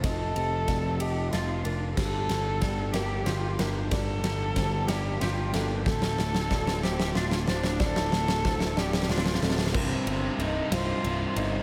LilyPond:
<<
  \new Staff \with { instrumentName = "Felt piano" } { \time 6/8 \key c \dorian \tempo 4. = 62 ees''4 d''8 ees''4 bes'8 | g'4 d''8 bes'4 bes'8 | d''4 c''8 d''4 a'8 | a'4 d''8 c''4 c''8 |
d''4 c''8 d''4 a'8 | bes'4 ees''8 c''4 c''8 | }
  \new Staff \with { instrumentName = "Cello" } { \time 6/8 \key c \dorian a'4. g'8 f'8 d'8 | a'4. g'8 f'8 d'8 | a'4. g'8 f'8 d'8 | a'4. g'8 f'8 d'8 |
a'4. g'8 f'8 c'8 | c'4 ees'8 f'4 ees'8 | }
  \new Staff \with { instrumentName = "Clean electric guitar" } { \clef bass \time 6/8 \key c \dorian <f, f a f'>8 c8 f4 f'4 | g,8 d8 g8 bes8 g'8 bes8 | g,8 d8 g8 bes8 g'8 bes8 | d,8 a,8 d8 f8 d'8 f8 |
d,8 a,8 d8 f8 d'8 f8 | r2. | }
  \new Staff \with { instrumentName = "Overdriven electric guitar" } { \clef bass \time 6/8 \key c \dorian r2. | r2. | r2. | r2. |
r2. | <c, g, c>8 <c, g, c>8 <c, g, c>8 <c, g, c>8 <c, g, c>8 <c, g, c>8 | }
  \new Staff \with { instrumentName = "Picked electric bass" } { \clef bass \time 6/8 \key c \dorian f,,8 f,,8 f,,4 f,,8 f,,8 | g,,8 g,,8 g,,4 g,,8 g,,8 | g,,8 g,,8 g,,4 g,,8 g,,8 | d,,8 d,,8 d,,4 d,,8 d,,8 |
d,,8 d,,8 d,,4 d,,8 d,,8 | c,,8 g,,8 c,,8 c,,8 c,,8 g,,8 | }
  \new DrumStaff \with { instrumentName = "Drums" } \drummode { \time 6/8 <bd cymr sn>8 cymr8 <bd cymr sn>8 cymr8 <cymr sn>8 cymr8 | <cymc bd sn>8 <cymr sn>8 <bd cymr sn>8 <cymr sn>8 <cymr sn>8 <cymr sn>8 | <bd cymr sn>8 <cymr sn>8 <bd cymr sn>8 <cymr sn>8 <cymr sn>8 <cymr sn>8 | <bd sn>16 sn16 sn16 sn16 <bd sn>16 sn16 sn16 sn16 sn16 sn16 sn16 sn16 |
<bd sn>16 sn16 sn16 sn16 <bd sn>16 sn16 sn16 sn32 sn32 sn32 sn32 sn32 sn32 sn32 sn32 sn32 sn32 | <cymc bd>8 cymr8 cymr8 <cymr sn>8 cymr8 cymr8 | }
>>